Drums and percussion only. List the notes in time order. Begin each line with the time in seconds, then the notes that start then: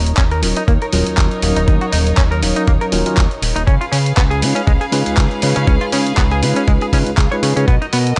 0.06 closed hi-hat
0.17 kick, clap, closed hi-hat
0.31 closed hi-hat
0.43 open hi-hat
0.56 closed hi-hat
0.68 kick, closed hi-hat
0.82 closed hi-hat
0.93 open hi-hat
1.07 closed hi-hat
1.17 kick, clap, closed hi-hat
1.31 closed hi-hat
1.42 open hi-hat
1.56 closed hi-hat
1.68 kick, closed hi-hat
1.81 closed hi-hat
1.93 open hi-hat
2.07 closed hi-hat
2.17 kick, clap, closed hi-hat
2.32 closed hi-hat
2.43 open hi-hat
2.56 closed hi-hat
2.67 kick, closed hi-hat
2.81 closed hi-hat
2.92 open hi-hat
3.06 closed hi-hat
3.17 kick, clap, closed hi-hat
3.31 closed hi-hat
3.43 open hi-hat
3.56 closed hi-hat
3.67 kick, closed hi-hat
3.81 closed hi-hat
3.93 open hi-hat
4.06 closed hi-hat
4.17 kick, clap, closed hi-hat
4.31 closed hi-hat
4.42 open hi-hat
4.56 closed hi-hat
4.67 kick, closed hi-hat
4.81 closed hi-hat
4.92 open hi-hat
5.06 closed hi-hat
5.17 kick, clap, closed hi-hat
5.31 closed hi-hat
5.42 open hi-hat
5.56 closed hi-hat
5.67 kick, closed hi-hat
5.81 closed hi-hat
5.92 open hi-hat
6.07 closed hi-hat
6.17 kick, clap, closed hi-hat
6.31 closed hi-hat
6.43 open hi-hat
6.56 closed hi-hat
6.68 kick, closed hi-hat
6.81 closed hi-hat
6.93 kick, open hi-hat
7.07 closed hi-hat
7.17 kick, clap, closed hi-hat
7.32 closed hi-hat
7.43 open hi-hat
7.57 closed hi-hat
7.68 kick, closed hi-hat
7.82 closed hi-hat
7.93 open hi-hat
8.07 closed hi-hat